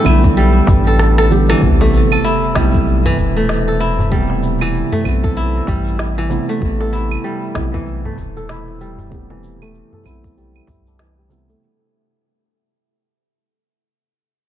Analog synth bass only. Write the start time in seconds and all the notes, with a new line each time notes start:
0.06 B1
0.68 A1
1.62 A1
2.56 B1
3.18 E1
5.06 B1
5.68 A1
6.62 A1
7.56 B1
8.18 E1
10.06 B1
10.68 C2